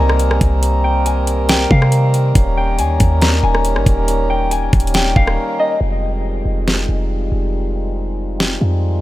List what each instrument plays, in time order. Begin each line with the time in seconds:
Already playing: 808-style bass C2, harmonium D#3 G3 A#3 C4 A#4, harp D#5 G#5 A#5
0.09 cross-stick
0.19 closed hi-hat
0.31 cross-stick
0.41 808-style bass C2, kick, closed hi-hat
0.63 closed hi-hat
0.84 harp G5
1.06 harp G#5, closed hi-hat
1.27 closed hi-hat
1.49 harp G5, snare, closed hi-hat
1.71 808-style bass C3, harp F5, kick
1.82 cross-stick
1.92 closed hi-hat
2.14 closed hi-hat
2.35 808-style bass D#1, harmonium C#4, kick, closed hi-hat
2.57 harp G5
2.79 808-style bass D#2, harp G#5, closed hi-hat
3.00 808-style bass D#2, kick, closed hi-hat
3.21 harp A#5, snare, closed hi-hat
3.43 808-style bass D#1, harp G#5
3.55 cross-stick
3.65 closed hi-hat
3.76 808-style bass G1, cross-stick
3.86 808-style bass D#1, kick, closed hi-hat
4.08 closed hi-hat
4.30 harp G5
4.51 harp G#5, closed hi-hat
4.73 808-style bass D#1, kick, closed hi-hat
4.80 closed hi-hat
4.87 closed hi-hat
4.94 harp G5, snare, closed hi-hat
5.16 808-style bass D#1, harp F5, kick
5.27 cross-stick
5.59 harp D#5
5.81 808-style bass F1, harmonium D#3 G3 G#3 C4 F4
6.03 harp G5
6.24 harp G#5
6.45 808-style bass F1
6.67 harp A#5, snare
6.89 808-style bass F1, harp G#5
7.32 808-style bass F1
7.75 harp G5
7.96 harp G#5
8.39 harp G5, snare
8.61 808-style bass F2, harp F5